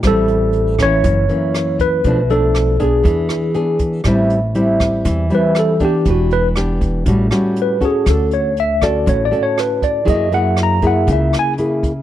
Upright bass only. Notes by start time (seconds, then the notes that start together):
0.03 A1
1.04 F#1
2.04 B1
3.05 E2
4.04 A1
5.05 E2
6.06 E1
7.06 A1
8.07 D2
9.07 A1
10.07 F#2
11.08 C#2